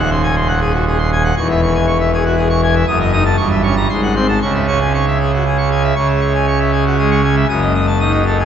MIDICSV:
0, 0, Header, 1, 2, 480
1, 0, Start_track
1, 0, Key_signature, 4, "minor"
1, 0, Tempo, 502513
1, 1302, Time_signature, 3, 2, 24, 8
1, 3228, Tempo, 513259
1, 7970, End_track
2, 0, Start_track
2, 0, Title_t, "Pipe organ"
2, 0, Program_c, 0, 19
2, 0, Note_on_c, 0, 27, 97
2, 0, Note_on_c, 0, 39, 97
2, 101, Note_on_c, 0, 84, 69
2, 211, Note_off_c, 0, 84, 0
2, 224, Note_on_c, 0, 80, 78
2, 333, Note_off_c, 0, 80, 0
2, 344, Note_on_c, 0, 84, 71
2, 453, Note_off_c, 0, 84, 0
2, 456, Note_on_c, 0, 78, 73
2, 568, Note_off_c, 0, 78, 0
2, 582, Note_on_c, 0, 68, 77
2, 691, Note_off_c, 0, 68, 0
2, 705, Note_on_c, 0, 66, 69
2, 807, Note_off_c, 0, 66, 0
2, 831, Note_on_c, 0, 68, 68
2, 935, Note_off_c, 0, 68, 0
2, 941, Note_on_c, 0, 84, 75
2, 1049, Note_off_c, 0, 84, 0
2, 1073, Note_on_c, 0, 80, 78
2, 1175, Note_off_c, 0, 80, 0
2, 1186, Note_on_c, 0, 78, 74
2, 1260, Note_off_c, 0, 27, 0
2, 1262, Note_off_c, 0, 39, 0
2, 1286, Note_off_c, 0, 78, 0
2, 1307, Note_on_c, 0, 85, 106
2, 1308, Note_on_c, 0, 28, 95
2, 1308, Note_on_c, 0, 40, 87
2, 1411, Note_off_c, 0, 85, 0
2, 1429, Note_on_c, 0, 76, 66
2, 1532, Note_off_c, 0, 76, 0
2, 1552, Note_on_c, 0, 85, 63
2, 1653, Note_off_c, 0, 85, 0
2, 1666, Note_on_c, 0, 80, 66
2, 1770, Note_off_c, 0, 80, 0
2, 1782, Note_on_c, 0, 85, 75
2, 1888, Note_off_c, 0, 85, 0
2, 1912, Note_on_c, 0, 76, 65
2, 2015, Note_off_c, 0, 76, 0
2, 2039, Note_on_c, 0, 68, 67
2, 2139, Note_off_c, 0, 68, 0
2, 2146, Note_on_c, 0, 66, 62
2, 2247, Note_off_c, 0, 66, 0
2, 2263, Note_on_c, 0, 68, 61
2, 2370, Note_off_c, 0, 68, 0
2, 2384, Note_on_c, 0, 85, 73
2, 2491, Note_off_c, 0, 85, 0
2, 2513, Note_on_c, 0, 80, 76
2, 2616, Note_off_c, 0, 80, 0
2, 2626, Note_on_c, 0, 76, 75
2, 2709, Note_off_c, 0, 28, 0
2, 2709, Note_off_c, 0, 40, 0
2, 2727, Note_off_c, 0, 76, 0
2, 2743, Note_on_c, 0, 30, 83
2, 2743, Note_on_c, 0, 87, 101
2, 2744, Note_on_c, 0, 42, 87
2, 2851, Note_off_c, 0, 87, 0
2, 2865, Note_on_c, 0, 75, 63
2, 2973, Note_off_c, 0, 75, 0
2, 2978, Note_on_c, 0, 63, 53
2, 2981, Note_on_c, 0, 87, 65
2, 3089, Note_off_c, 0, 63, 0
2, 3091, Note_off_c, 0, 87, 0
2, 3107, Note_on_c, 0, 81, 66
2, 3209, Note_off_c, 0, 81, 0
2, 3212, Note_off_c, 0, 30, 0
2, 3212, Note_off_c, 0, 42, 0
2, 3220, Note_on_c, 0, 85, 82
2, 3224, Note_on_c, 0, 31, 78
2, 3225, Note_on_c, 0, 43, 74
2, 3329, Note_off_c, 0, 85, 0
2, 3345, Note_on_c, 0, 76, 60
2, 3451, Note_off_c, 0, 76, 0
2, 3464, Note_on_c, 0, 61, 56
2, 3467, Note_on_c, 0, 85, 66
2, 3570, Note_off_c, 0, 61, 0
2, 3572, Note_off_c, 0, 85, 0
2, 3589, Note_on_c, 0, 82, 63
2, 3687, Note_off_c, 0, 31, 0
2, 3688, Note_off_c, 0, 43, 0
2, 3688, Note_off_c, 0, 82, 0
2, 3708, Note_on_c, 0, 32, 74
2, 3709, Note_on_c, 0, 84, 76
2, 3711, Note_on_c, 0, 44, 66
2, 3814, Note_off_c, 0, 84, 0
2, 3833, Note_on_c, 0, 78, 66
2, 3937, Note_off_c, 0, 78, 0
2, 3954, Note_on_c, 0, 60, 59
2, 3957, Note_on_c, 0, 84, 64
2, 4058, Note_off_c, 0, 60, 0
2, 4060, Note_off_c, 0, 84, 0
2, 4069, Note_on_c, 0, 81, 67
2, 4172, Note_off_c, 0, 81, 0
2, 4177, Note_off_c, 0, 32, 0
2, 4178, Note_off_c, 0, 44, 0
2, 4198, Note_on_c, 0, 37, 71
2, 4199, Note_on_c, 0, 49, 77
2, 4200, Note_on_c, 0, 85, 87
2, 4305, Note_off_c, 0, 85, 0
2, 4315, Note_on_c, 0, 76, 52
2, 4423, Note_off_c, 0, 76, 0
2, 4438, Note_on_c, 0, 85, 62
2, 4440, Note_on_c, 0, 61, 50
2, 4546, Note_off_c, 0, 85, 0
2, 4547, Note_off_c, 0, 61, 0
2, 4563, Note_on_c, 0, 80, 61
2, 4670, Note_off_c, 0, 80, 0
2, 4688, Note_on_c, 0, 85, 63
2, 4793, Note_off_c, 0, 85, 0
2, 4808, Note_on_c, 0, 76, 55
2, 4913, Note_off_c, 0, 76, 0
2, 4932, Note_on_c, 0, 68, 58
2, 5036, Note_off_c, 0, 68, 0
2, 5056, Note_on_c, 0, 66, 59
2, 5153, Note_off_c, 0, 66, 0
2, 5175, Note_on_c, 0, 68, 52
2, 5279, Note_off_c, 0, 68, 0
2, 5284, Note_on_c, 0, 85, 56
2, 5393, Note_off_c, 0, 85, 0
2, 5409, Note_on_c, 0, 80, 63
2, 5516, Note_off_c, 0, 80, 0
2, 5524, Note_on_c, 0, 76, 63
2, 5615, Note_off_c, 0, 37, 0
2, 5615, Note_off_c, 0, 49, 0
2, 5628, Note_off_c, 0, 76, 0
2, 5639, Note_on_c, 0, 85, 91
2, 5642, Note_on_c, 0, 37, 75
2, 5643, Note_on_c, 0, 49, 83
2, 5749, Note_off_c, 0, 85, 0
2, 5756, Note_on_c, 0, 76, 55
2, 5868, Note_off_c, 0, 76, 0
2, 5873, Note_on_c, 0, 85, 55
2, 5985, Note_off_c, 0, 85, 0
2, 5997, Note_on_c, 0, 80, 60
2, 6108, Note_off_c, 0, 80, 0
2, 6121, Note_on_c, 0, 85, 63
2, 6230, Note_off_c, 0, 85, 0
2, 6234, Note_on_c, 0, 76, 57
2, 6345, Note_off_c, 0, 76, 0
2, 6359, Note_on_c, 0, 68, 61
2, 6467, Note_off_c, 0, 68, 0
2, 6478, Note_on_c, 0, 66, 61
2, 6581, Note_off_c, 0, 66, 0
2, 6596, Note_on_c, 0, 56, 56
2, 6600, Note_on_c, 0, 68, 59
2, 6706, Note_off_c, 0, 68, 0
2, 6715, Note_on_c, 0, 85, 61
2, 6810, Note_off_c, 0, 56, 0
2, 6823, Note_off_c, 0, 85, 0
2, 6835, Note_on_c, 0, 80, 70
2, 6943, Note_off_c, 0, 80, 0
2, 6946, Note_on_c, 0, 76, 67
2, 7037, Note_off_c, 0, 37, 0
2, 7037, Note_off_c, 0, 49, 0
2, 7052, Note_off_c, 0, 76, 0
2, 7069, Note_on_c, 0, 30, 82
2, 7072, Note_on_c, 0, 42, 74
2, 7072, Note_on_c, 0, 87, 89
2, 7180, Note_off_c, 0, 87, 0
2, 7191, Note_on_c, 0, 75, 54
2, 7299, Note_off_c, 0, 75, 0
2, 7306, Note_on_c, 0, 87, 57
2, 7415, Note_off_c, 0, 87, 0
2, 7424, Note_on_c, 0, 81, 59
2, 7534, Note_off_c, 0, 81, 0
2, 7548, Note_on_c, 0, 63, 55
2, 7549, Note_on_c, 0, 87, 66
2, 7656, Note_off_c, 0, 87, 0
2, 7669, Note_on_c, 0, 75, 60
2, 7762, Note_off_c, 0, 63, 0
2, 7776, Note_off_c, 0, 75, 0
2, 7795, Note_on_c, 0, 69, 60
2, 7898, Note_off_c, 0, 69, 0
2, 7914, Note_on_c, 0, 68, 63
2, 7970, Note_off_c, 0, 30, 0
2, 7970, Note_off_c, 0, 42, 0
2, 7970, Note_off_c, 0, 68, 0
2, 7970, End_track
0, 0, End_of_file